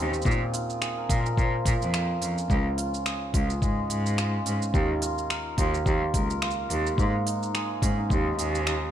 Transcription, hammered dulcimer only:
0.00 0.30 G#2 medium
0.00 4.60 D#3 medium
0.00 0.30 G#3 medium
0.00 2.02 A#3 medium
0.00 2.28 C4 medium
0.00 3.46 D#4 medium
0.00 0.53 F4 medium
0.00 0.81 G#4 medium
0.26 2.55 A#2 medium
0.54 1.09 F4 medium
0.82 3.05 G#4 medium
0.97 1.65 A#4 medium
1.10 1.94 F4 medium
1.38 8.91 F3 medium
1.66 4.49 A#4 medium
1.94 2.77 F4 medium
2.22 4.46 C#4 medium
2.50 4.79 C#3 medium
2.78 3.33 F4 medium
3.06 3.90 G#4 medium
3.34 4.18 F4 medium
3.62 4.79 G#3 medium
3.90 6.93 G#4 medium
4.18 5.02 F4 medium
4.46 7.82 C#4 medium
4.74 8.91 D#3 medium
5.02 5.58 F4 medium
5.30 6.14 A#4 medium
5.58 6.42 F4 medium
5.86 6.70 A#3 medium
6.14 8.91 A#4 medium
6.42 8.91 F4 medium
6.70 8.91 A#3 medium
6.98 8.91 G#2 medium
7.26 7.98 D#4 medium
7.54 8.38 G#4 medium
7.82 8.91 C#4 medium
7.98 8.66 D#4 medium
8.10 8.91 G#3 medium
8.38 8.91 G#4 medium
8.66 8.91 D#4 medium

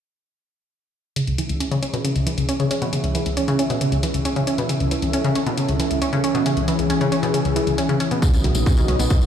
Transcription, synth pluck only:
1.16 1.19 C#3 medium
1.27 1.32 C#2 medium
1.38 1.41 E3 medium
1.49 1.52 C#2 medium
1.60 1.65 C#4 medium
1.71 1.76 C#3 loud
1.82 1.85 C#4 medium
1.93 2.01 B2 loud
2.05 2.08 C#3 medium
2.16 2.21 C#2 medium
2.27 2.30 E3 medium
2.38 2.41 C#2 medium
2.49 2.54 C#4 medium
2.60 2.65 C#3 medium
2.71 2.74 C#4 medium
2.82 2.89 B2 loud
2.93 2.96 C#3 medium
3.04 3.09 C#2 medium
3.15 3.18 E3 medium
3.26 3.29 C#2 medium
3.37 3.42 C#4 medium
3.48 3.53 C#3 loud
3.59 3.62 C#4 medium
3.70 3.77 B2 loud
3.81 3.84 C#3 medium
3.92 3.97 C#2 medium
4.03 4.06 E3 medium
4.14 4.17 C#2 medium
4.25 4.30 C#4 medium
4.36 4.41 C#3 loud
4.47 4.50 C#4 medium
4.58 4.66 B2 loud
4.69 4.72 C#3 medium
4.81 4.85 C#2 medium
4.92 4.94 E3 medium
5.03 5.05 C#2 medium
5.14 5.18 C#4 medium
5.25 5.29 C#3 loud
5.36 5.38 C#4 medium
5.47 5.54 B2 loud
5.58 5.61 C#3 medium
5.69 5.74 C#2 medium
5.80 5.83 E3 medium
5.91 5.94 C#2 medium
6.02 6.07 C#4 medium
6.13 6.18 C#3 loud
6.24 6.27 C#4 medium
6.35 6.42 B2 loud
6.46 6.49 C#3 medium
6.57 6.62 C#2 medium
6.68 6.71 E3 medium
6.79 6.82 C#2 medium
6.90 6.95 C#4 medium
7.01 7.06 C#3 loud
7.12 7.15 C#4 medium
7.23 7.30 B2 loud
7.34 7.37 C#3 medium
7.45 7.50 C#2 medium
7.56 7.59 E3 medium
7.67 7.70 C#2 medium
7.78 7.83 C#4 medium
7.89 7.94 C#3 loud
8.00 8.03 C#4 medium
8.11 8.19 B2 loud
8.22 8.25 C#3 medium
8.33 8.38 C#2 medium
8.44 8.47 D#3 medium
8.55 8.58 C#2 medium
8.66 8.71 C#4 medium
8.77 8.82 C#3 loud
8.88 8.91 C#4 medium
8.99 9.07 B2 loud
9.10 9.13 C#3 medium
9.22 9.26 C#2 medium

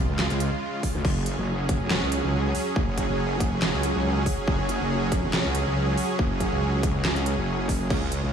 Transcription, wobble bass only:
0.09 0.29 C#2 loud
0.30 0.50 C#2 loud
0.95 1.03 D2 loud
1.05 1.36 F#1 medium
1.38 1.82 F#1 loud
1.82 2.00 F1 loud
2.02 2.21 C#2 loud
2.23 2.53 C#2 loud
2.76 3.07 F#1 loud
3.09 3.53 F#1 loud
3.53 3.71 F1 loud
3.73 3.93 C#2 loud
3.95 4.25 C#2 loud
4.48 4.79 F#1 loud
4.80 5.43 F#1 loud
5.45 5.64 C#2 loud
5.66 5.96 C#2 loud
6.19 6.50 F#1 loud
6.52 7.36 C#2 loud
7.38 7.89 F#1 loud
7.90 8.21 C#2 loud
8.23 8.33 C#2 loud

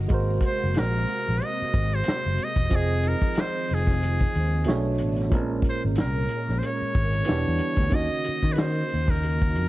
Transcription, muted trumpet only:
0.46 0.80 C5 medium
0.79 1.46 A#4 loud
1.44 1.96 D#5 loud
1.95 2.45 C5 loud
2.44 2.77 D#5 loud
2.76 3.10 G#4 loud
3.08 3.42 A#4 medium
3.41 3.76 C5 loud
3.74 5.02 G#4 medium
5.69 5.83 C5 medium
6.01 6.60 A#4 medium
6.59 6.67 C5 medium
6.66 7.96 C#5 loud
7.95 8.54 D#5 loud
8.53 8.61 B4 medium
8.59 9.12 C5 loud
9.10 9.69 A#4 medium

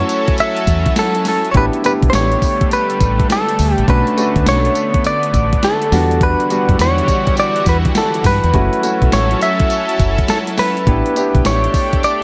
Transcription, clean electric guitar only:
0.00 0.36 C#5 loud
0.40 0.94 E5 loud
0.99 1.27 A4 loud
1.28 1.51 A4 medium
1.51 1.56 C#5 medium
1.57 1.65 B4 loud
1.86 1.92 B4 medium
2.10 2.14 C5 medium
2.15 2.68 C#5 loud
2.73 3.27 B4 loud
3.32 3.73 A4 loud
3.73 3.85 G4 loud
3.90 4.48 B4 loud
4.49 5.06 C#5 loud
5.07 5.66 D5 loud
5.64 6.24 A4 loud
6.23 6.76 B4 loud
6.81 7.35 C#5 loud
7.40 7.69 D5 loud
7.69 7.76 B4 loud
7.98 8.24 A4 loud
8.26 9.13 B4 medium
9.13 9.42 C#5 loud
9.43 10.29 E5 loud
10.30 10.38 A4 medium
10.59 11.46 B4 loud
11.46 12.04 C#5 loud
12.04 12.23 D5 loud

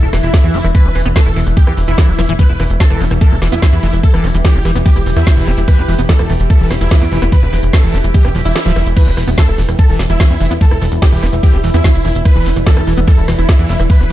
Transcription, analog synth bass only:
0.03 0.10 E1 medium
0.13 0.20 E1 loud
0.23 0.31 E1 loud
0.44 0.51 E2 medium
0.54 0.62 F1 loud
0.64 0.72 E1 medium
0.85 0.92 E1 medium
0.95 1.03 E1 loud
1.06 1.13 E1 medium
1.26 1.33 E1 medium
1.36 1.44 E1 loud
1.47 1.54 E1 medium
1.67 1.75 E1 medium
1.77 1.85 E1 loud
1.88 1.95 E1 medium
2.08 2.16 E1 medium
2.19 2.26 E1 loud
2.29 2.36 E1 medium
2.49 2.57 E1 medium
2.60 2.67 E1 loud
2.70 2.77 E1 medium
2.90 2.98 E1 medium
3.01 3.08 E1 loud
3.11 3.18 E1 medium
3.32 3.39 E1 medium
3.42 3.49 E1 loud
3.52 3.60 E1 medium
3.73 3.80 E2 medium
3.83 3.90 F1 loud
3.93 4.01 E1 medium
4.14 4.21 E1 medium
4.24 4.31 E1 loud
4.34 4.42 E1 medium
4.55 4.62 E1 medium
4.65 4.73 E1 medium
4.75 4.83 E1 medium
4.96 5.03 E1 medium
5.06 5.14 E1 loud
5.16 5.24 E2 loud
5.37 5.44 E1 medium
5.47 5.55 E1 loud
5.58 5.65 E1 medium
5.78 5.86 E1 medium
5.88 5.96 E1 loud
5.99 6.06 E1 loud
6.19 6.27 E1 medium
6.29 6.37 E1 loud
6.40 6.47 E1 medium
6.60 6.68 E1 medium
6.71 6.78 E1 loud
6.81 6.88 E1 loud
7.01 7.09 E2 medium
7.12 7.19 F1 loud
7.22 7.29 E1 medium
7.43 7.50 E1 medium
7.53 7.60 E1 loud
7.63 7.70 E1 medium
7.84 7.91 E1 medium
7.94 8.01 E1 loud
8.04 8.12 E1 medium
8.25 8.32 E1 medium
8.35 8.42 E1 loud
8.45 8.53 E1 medium
8.66 8.73 D1 medium
8.76 8.83 E1 loud
8.86 8.94 E1 medium
9.07 9.14 E1 medium
9.17 9.25 E1 loud
9.27 9.35 E1 medium
9.48 9.55 E1 medium
9.58 9.66 E1 loud
9.69 9.76 E1 medium
9.89 9.97 E1 medium
9.99 10.07 E1 loud
10.10 10.17 E1 loud
10.30 10.38 E2 medium
10.41 10.48 F1 loud
10.51 10.58 E1 medium
10.71 10.79 E1 medium
10.82 10.89 E1 loud
10.92 10.99 E1 medium
11.12 11.20 E1 medium
11.23 11.30 E1 loud
11.33 11.40 E1 medium
11.54 11.61 E1 medium
11.64 11.71 E1 loud
11.74 11.81 E2 medium
11.95 12.02 E1 medium
12.05 12.12 E1 loud
12.15 12.23 E1 medium
12.36 12.43 E1 medium
12.46 12.53 E1 loud
12.56 12.64 E1 loud
12.77 12.84 E1 medium
12.87 12.94 E1 loud
12.97 13.05 E1 medium
13.18 13.25 E1 medium
13.28 13.36 E1 loud
13.38 13.46 E1 medium
13.59 13.66 E2 medium
13.69 13.77 F1 loud
13.80 13.87 E1 medium
14.00 14.07 E1 medium

